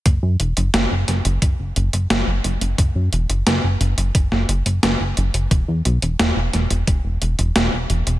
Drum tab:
HH |x-xxx-xxx-xxx-xx|x-xxx-xxx-xxx-xx|x-xxx-xxx-xxx-xx|
SD |----o-o-----o---|----o----o--o---|----o-o-----o---|
BD |o-------o-------|o-------o-------|o-------o-------|